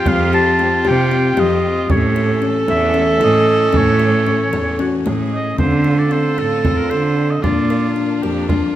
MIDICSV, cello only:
0, 0, Header, 1, 2, 480
1, 0, Start_track
1, 0, Tempo, 526778
1, 57, Time_signature, 7, 3, 24, 8
1, 7978, End_track
2, 0, Start_track
2, 0, Title_t, "Cello"
2, 0, Program_c, 0, 42
2, 55, Note_on_c, 0, 41, 99
2, 609, Note_off_c, 0, 41, 0
2, 771, Note_on_c, 0, 48, 93
2, 1142, Note_off_c, 0, 48, 0
2, 1251, Note_on_c, 0, 41, 89
2, 1622, Note_off_c, 0, 41, 0
2, 1731, Note_on_c, 0, 45, 92
2, 2286, Note_off_c, 0, 45, 0
2, 2456, Note_on_c, 0, 40, 94
2, 2824, Note_off_c, 0, 40, 0
2, 2930, Note_on_c, 0, 45, 88
2, 3301, Note_off_c, 0, 45, 0
2, 3400, Note_on_c, 0, 45, 100
2, 3959, Note_off_c, 0, 45, 0
2, 4125, Note_on_c, 0, 40, 84
2, 4497, Note_off_c, 0, 40, 0
2, 4603, Note_on_c, 0, 45, 79
2, 4976, Note_off_c, 0, 45, 0
2, 5082, Note_on_c, 0, 50, 92
2, 5641, Note_off_c, 0, 50, 0
2, 5809, Note_on_c, 0, 45, 71
2, 6181, Note_off_c, 0, 45, 0
2, 6289, Note_on_c, 0, 50, 79
2, 6661, Note_off_c, 0, 50, 0
2, 6764, Note_on_c, 0, 46, 93
2, 7325, Note_off_c, 0, 46, 0
2, 7488, Note_on_c, 0, 41, 77
2, 7863, Note_off_c, 0, 41, 0
2, 7978, End_track
0, 0, End_of_file